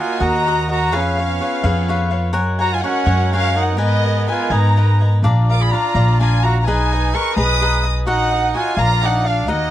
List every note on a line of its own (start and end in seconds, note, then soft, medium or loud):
0.00 0.92 A#3 medium
0.00 0.23 F4 medium
0.00 0.20 F#4 soft
0.00 0.92 F#4 medium
0.00 0.20 A#4 medium
0.00 0.19 D#5 medium
0.00 0.92 D#5 medium
0.00 0.19 F#5 medium
0.00 0.19 G#5 medium
0.20 0.92 D#2 medium
0.20 0.45 F#4 medium
0.20 0.70 F#4 medium
0.20 0.46 A#4 medium
0.20 0.46 D#5 medium
0.20 0.46 F#5 medium
0.20 0.70 A#5 loud
0.46 0.69 F#4 medium
0.46 0.69 A#4 medium
0.46 0.68 D#5 medium
0.46 0.67 F#5 medium
0.68 0.97 F#4 loud
0.68 0.92 A#4 soft
0.68 0.92 D#5 soft
0.68 0.92 F#5 medium
0.68 0.92 A#5 medium
0.92 1.38 F2 loud
0.92 2.34 B3 medium
0.92 2.13 C#4 medium
0.92 2.34 F4 medium
0.92 1.18 G#4 loud
0.92 1.17 B4 medium
0.92 1.18 C#5 medium
0.92 2.34 C#5 medium
0.92 1.16 F5 medium
0.92 2.13 F5 medium
1.18 1.40 B4 medium
1.18 1.40 C#5 soft
1.18 1.41 F5 medium
1.40 1.63 G#4 medium
1.40 1.63 B4 medium
1.40 1.63 C#5 medium
1.40 1.62 F5 medium
1.64 2.34 F2 loud
1.64 1.87 G#4 medium
1.64 1.88 B4 medium
1.64 1.88 C#5 medium
1.64 1.89 F5 medium
1.89 2.11 G#4 medium
1.89 2.10 B4 medium
1.89 2.11 C#5 medium
1.89 2.09 F5 loud
2.11 2.33 B4 medium
2.11 2.32 C#5 medium
2.11 2.34 F5 medium
2.33 2.81 F#2 loud
2.33 3.77 G#3 medium
2.33 3.77 F#4 medium
2.33 2.59 A#4 loud
2.33 5.20 A#4 loud
2.33 2.59 C#5 medium
2.33 2.59 F#5 loud
2.33 2.58 G#5 loud
2.59 2.75 F#4 loud
2.59 2.83 C#5 soft
2.59 2.83 F#5 soft
2.59 2.82 G#5 medium
2.59 2.70 A#5 medium
2.72 2.83 F4 medium
2.72 2.83 G#5 loud
2.83 3.34 C#4 loud
2.83 3.06 A#4 medium
2.83 3.06 C#5 medium
2.83 3.29 F#5 loud
2.83 3.05 F#5 medium
2.83 3.05 G#5 medium
3.06 3.78 F#2 loud
3.06 3.32 A#4 medium
3.06 3.32 C#5 medium
3.06 3.32 F#5 medium
3.06 3.32 G#5 medium
3.33 3.58 C#4 medium
3.33 3.55 A#4 medium
3.33 3.55 C#5 medium
3.33 3.56 F5 loud
3.33 3.54 F#5 medium
3.33 3.53 G#5 medium
3.54 3.79 D#4 medium
3.54 3.78 C#5 soft
3.54 3.78 F#5 soft
3.54 3.79 F#5 medium
3.54 3.77 G#5 medium
3.77 4.25 G#2 loud
3.77 5.21 G#3 medium
3.77 5.21 B3 medium
3.77 4.32 B3 medium
3.77 4.03 A#4 medium
3.77 4.04 B4 medium
3.77 4.04 D#5 medium
3.77 4.24 D#5 loud
3.77 4.03 G#5 loud
4.04 4.27 B4 soft
4.04 4.27 D#5 soft
4.04 4.27 G#5 soft
4.27 4.55 F4 medium
4.27 4.50 A#4 soft
4.27 4.50 B4 medium
4.27 4.50 D#5 medium
4.27 4.51 G#5 medium
4.27 4.49 G#5 medium
4.50 5.24 G#2 loud
4.50 5.06 D#4 medium
4.50 4.76 A#4 medium
4.50 4.77 B4 medium
4.50 4.76 D#5 medium
4.50 4.76 G#5 medium
4.50 5.06 A#5 medium
4.77 5.00 A#4 medium
4.77 5.00 B4 medium
4.77 5.00 D#5 medium
4.77 4.99 G#5 medium
5.01 5.23 B4 soft
5.01 5.24 D#5 soft
5.01 5.23 G#5 soft
5.23 5.69 A#1 loud
5.23 5.49 D4 medium
5.23 6.65 F4 medium
5.23 6.65 D5 loud
5.23 5.49 D5 loud
5.23 5.49 F5 medium
5.23 5.48 A#5 medium
5.50 5.62 A#4 medium
5.50 5.72 D5 soft
5.50 5.73 F5 soft
5.50 5.72 A#5 medium
5.50 5.60 D6 medium
5.61 5.74 G#4 medium
5.61 5.72 B5 medium
5.72 5.95 D4 medium
5.72 6.20 F4 medium
5.72 5.95 D5 medium
5.72 5.94 F5 medium
5.72 6.20 A#5 medium
5.72 5.94 A#5 medium
5.94 6.66 A#1 loud
5.94 6.19 D4 medium
5.94 6.20 D5 medium
5.94 6.20 F5 medium
5.94 6.21 A#5 medium
6.20 6.43 D4 medium
6.20 6.45 F4 medium
6.20 6.44 D5 medium
6.20 6.43 F5 medium
6.20 6.42 G#5 loud
6.20 6.43 A#5 medium
6.43 6.60 F#4 loud
6.43 6.67 D5 soft
6.43 6.67 F5 medium
6.43 6.58 A#5 medium
6.43 6.66 A#5 medium
6.60 6.68 F#4 medium
6.60 6.66 A#5 medium
6.66 7.12 B1 medium
6.66 7.16 D#4 medium
6.66 8.06 G#4 medium
6.66 6.92 G#4 medium
6.66 8.06 B4 medium
6.66 6.92 B4 medium
6.66 6.93 D#5 medium
6.66 7.14 G#5 loud
6.66 6.91 A#5 loud
6.92 7.14 B4 medium
6.92 7.13 D#5 soft
6.92 7.14 A#5 soft
7.14 7.36 G#4 medium
7.14 7.36 A#4 medium
7.14 7.36 B4 medium
7.14 7.36 D#5 medium
7.14 7.36 A#5 medium
7.14 7.37 C#6 medium
7.36 8.06 B1 loud
7.36 7.60 G#4 medium
7.36 7.87 B4 medium
7.36 7.61 B4 medium
7.36 7.61 D#5 medium
7.36 7.62 A#5 medium
7.36 7.87 D#6 loud
7.61 7.84 G#4 medium
7.61 7.83 B4 medium
7.61 7.84 D#5 medium
7.61 7.82 A#5 medium
7.84 8.07 B4 medium
7.84 8.06 D#5 soft
7.84 8.07 A#5 medium
8.06 8.52 A#1 loud
8.06 8.59 D#4 medium
8.06 8.32 F#4 medium
8.06 8.77 F#4 medium
8.06 8.32 A#4 loud
8.06 8.77 D#5 medium
8.06 8.32 D#5 medium
8.06 8.31 F#5 loud
8.06 8.52 F#5 loud
8.32 8.54 A#4 soft
8.32 8.54 D#5 medium
8.32 8.55 F#5 medium
8.55 8.79 F4 medium
8.55 8.77 F#4 medium
8.55 8.77 A#4 medium
8.55 8.77 D#5 medium
8.55 8.77 F#5 medium
8.55 8.78 G#5 loud
8.77 9.48 A#1 medium
8.77 9.01 D4 medium
8.77 9.47 F4 medium
8.77 9.06 F4 medium
8.77 9.01 A#4 medium
8.77 9.02 D5 medium
8.77 9.48 D5 medium
8.77 9.03 F5 medium
8.77 9.04 A#5 loud
9.02 9.25 D4 medium
9.02 9.29 D#4 medium
9.02 9.25 A#4 medium
9.02 9.24 D5 medium
9.02 9.23 F5 medium
9.02 9.27 F#5 loud
9.25 9.49 D4 loud
9.25 9.47 A#4 soft
9.25 9.48 D5 medium
9.25 9.48 F5 medium
9.25 9.50 F5 medium
9.48 9.71 D#2 medium
9.48 9.71 A#3 medium
9.48 9.71 D#4 medium
9.48 9.71 F#4 medium
9.48 9.71 A#4 medium
9.48 9.71 D#5 medium
9.48 9.71 D#5 loud
9.48 9.71 F#5 medium